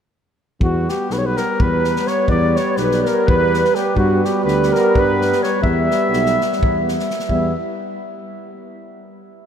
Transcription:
0.60 tuba E2, euphonium G3, french horn B3, cornet F#4, clarinet F#4, kick
0.89 cornet G4, clarinet G4, snare
1.10 tuba B1, cornet B4, clarinet B4, snare
1.17 clarinet C#5, cornet C#5
1.25 clarinet B4, cornet B4
1.37 cornet A#4, clarinet A#4, snare
1.60 tuba E2, clarinet B4, cornet B4, kick
1.84 snare
1.96 snare
2.07 clarinet C#5, cornet C#5, snare
2.28 tuba E2, clarinet D5, cornet D5, kick
2.55 clarinet C#5, cornet C#5, snare
2.77 tuba B1, cornet B4, clarinet B4, snare
2.92 snare
3.05 clarinet A#4, cornet A#4, snare
3.26 tuba E2, clarinet B4, kick
3.30 cornet B4
3.54 snare
3.65 snare
3.75 cornet G4, clarinet G4, snare
3.95 tuba G2, euphonium G3, french horn B3, clarinet F#4, cornet F#4, kick
4.23 clarinet G4, cornet G4, snare
4.44 tuba D2, cornet B4, clarinet B4, snare
4.63 snare
4.72 clarinet A#4, cornet A#4, snare
4.95 tuba G2, clarinet B4, kick
4.99 cornet B4
5.22 snare
5.32 snare
5.43 clarinet C#5, cornet C#5, snare
5.61 tuba E2, euphonium G3, french horn B3, clarinet E5, cornet E5, kick
5.91 snare
6.10 tuba B1, snare
6.26 snare
6.41 snare
6.53 snare
6.59 tuba E2, kick
6.88 snare
7.00 snare
7.11 snare
7.20 snare
7.28 tuba E2, euphonium G3, french horn B3, clarinet E4, cornet E5, kick

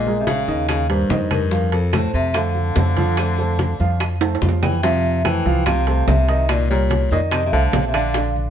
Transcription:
Already playing: upright bass A#1, baritone saxophone A#2, vibraphone D#5
0.06 grand piano G#3 G#4 A#4, high bongo, high conga, maracas
0.20 baritone saxophone C3, vibraphone E5
0.27 baritone saxophone C#3, vibraphone F5, high bongo, high conga, high timbale, maracas
0.48 upright bass D#2, grand piano D#3 D#4 D#5, maracas
0.68 baritone saxophone C#3, vibraphone F5, high bongo, high conga, high timbale, claves, maracas
0.89 baritone saxophone G2, grand piano G3 G4 A#4, vibraphone C5, high conga, high timbale, maracas
1.09 upright bass F2, grand piano D#3 D#4 D#5, high bongo, low bongo, high conga, low timbale, maracas
1.31 baritone saxophone G2, vibraphone A#4, high bongo, high conga, high timbale, claves, maracas
1.51 grand piano F3 F4 F5, high bongo, maracas
1.72 baritone saxophone F2, vibraphone A4, high bongo, high conga, high timbale, maracas
1.93 baritone saxophone A2, grand piano A3 A4 C5, vibraphone C5, high bongo, high conga, high timbale, claves, maracas
2.14 upright bass F2, baritone saxophone C3, vibraphone E5, high conga, maracas
2.34 baritone saxophone D3, grand piano A3 A4 C5, vibraphone F5, high bongo, high conga, high timbale, claves, maracas
2.55 high bongo, high conga, maracas
2.76 upright bass F2, grand piano A3 A4 C5, high bongo, low bongo, high conga, high timbale, low timbale, maracas
2.97 grand piano F3 F4 F5, high bongo, high conga, high timbale, maracas
3.17 grand piano A3 A4 C5, high bongo, high conga, high timbale, claves, maracas
3.38 grand piano A3 A4 C5, high bongo, high conga, maracas
3.59 high bongo, high conga, high timbale, maracas
3.80 upright bass F2, grand piano F3 F4 F5, maracas
4.00 high bongo, high conga, high timbale, claves, maracas
4.21 grand piano A3 A4 C5, high conga, high timbale, maracas
4.35 high timbale
4.42 upright bass F2, grand piano F3 F4 F5, high bongo, low bongo, high conga, maracas
4.49 low timbale
4.62 baritone saxophone E3, vibraphone G5, high bongo, high conga, low timbale, claves, maracas
4.83 baritone saxophone C3, grand piano F3 F4 E5, vibraphone E5, high bongo, high conga, high timbale, maracas
5.04 high conga, maracas
5.25 baritone saxophone E3, grand piano A3 A4 C5, vibraphone G5, high bongo, high conga, high timbale, low timbale, claves, maracas
5.45 upright bass C2, grand piano F3 F4 F5, high bongo, maracas
5.66 baritone saxophone C3, vibraphone F5, high bongo, high conga, low conga, high timbale, claves, maracas
5.87 grand piano A3 A4 C5, high bongo, high conga, high timbale, maracas
6.07 upright bass C2, baritone saxophone C3, vibraphone E5, high bongo, low bongo, high conga, low timbale, maracas
6.28 grand piano D#3 D#4 D#5, high timbale, maracas
6.49 baritone saxophone A#2, vibraphone D5, high bongo, high conga, high timbale, claves, maracas
6.69 baritone saxophone A#2, grand piano G3 G4 A#4, vibraphone C#5, high conga, maracas
6.90 high bongo, high conga, high timbale, low timbale, maracas
7.11 upright bass F2, baritone saxophone A#2, grand piano D#3 D#4 D#5, vibraphone D5, high bongo, high conga, maracas
7.31 baritone saxophone C3, vibraphone D#5, high bongo, high conga, high timbale, claves, maracas
7.45 baritone saxophone C3, vibraphone E5
7.52 upright bass C2, baritone saxophone D3, grand piano A3 A4 C5, vibraphone F5, high bongo, high conga, maracas
7.73 upright bass A#1, high bongo, low bongo, high conga, high timbale, low timbale, maracas
7.87 baritone saxophone C3, vibraphone E5
7.94 grand piano D3 D4 D5, baritone saxophone D3, vibraphone F5, high conga, high timbale, claves, maracas
8.14 grand piano D3 D4 D5, high bongo, high conga, high timbale, maracas
8.35 high conga, maracas

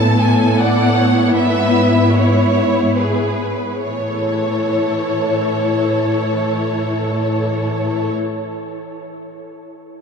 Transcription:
Already playing: cello section A2, viola section B3 E4, violin section A4 A5
0.22 violin section G#5
0.59 violin section D5 F#5
0.97 violin section C#5
1.34 cello section G#2, violin section B4 E5
2.14 violin section E4 C#5
2.98 violin section G#4 B4
3.85 cello section A2, viola section E3 E4, violin section A4 C#5

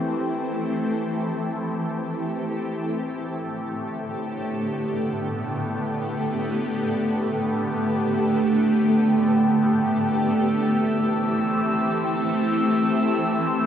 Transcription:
Already playing: ambient pad E3 A3 C4 G4 A4
2.84 ambient pad A2
3.01 ambient pad D3
3.43 ambient pad B3
9.79 ambient pad E3, synth texture E6
10.22 ambient pad C4

